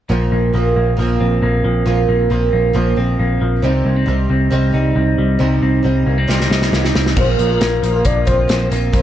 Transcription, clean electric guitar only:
0.10 A#2
0.32 A#3
0.54 F3
0.76 A#3
0.99 F3
1.21 C4
1.42 A#3
1.65 F3
1.86 A#2
2.09 A#3
2.31 F3
2.53 A#3
2.75 F3
2.97 C4
3.19 A#3
3.41 F3
3.63 C3
3.86 A#3
3.96 C4
4.08 G3
4.30 C4
4.52 G3
4.74 D#4
4.96 C4
5.18 G3
5.40 C3
5.62 C4
5.84 G3
6.06 A#3
6.18 C4
6.28 G3
6.50 D#4
6.72 A#3
6.83 C4
6.95 G3
7.17 A#2
7.39 F3
7.61 A#3
7.83 F3
8.05 A#3
8.27 F3
8.50 C4
8.72 A#3
8.94 A#2

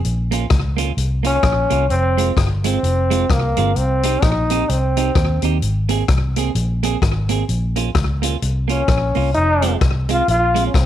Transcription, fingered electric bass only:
0.05 A#1
0.51 C#2
0.97 C2
1.44 A#1
1.71 C2
1.90 F1
2.37 G1
2.83 F1
3.29 C2
3.57 G1
3.76 C2
4.23 A#1
4.69 C2
5.16 D#2
5.43 D#2
5.62 G#1
6.09 C2
6.55 A#1
7.02 G#1
7.49 A#1
7.95 C#2
8.42 C2
8.88 A#1
9.16 C2
9.36 F1
9.81 C2
10.28 A#1
10.75 C2

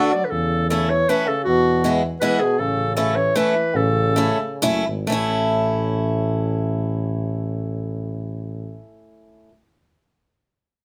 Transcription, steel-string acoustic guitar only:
Already playing: A3 D4 F#4
0.70 A3 C#4 E4
1.09 A3 C#4 E4
1.84 G#3 B3 E4
2.22 G#3 B3 E4
2.97 A3 C#4 E4
3.36 A3 C#4 E4
4.16 A3 C#4 E4
4.62 A3 C#4 E4
5.07 A3 C#4
5.12 E4

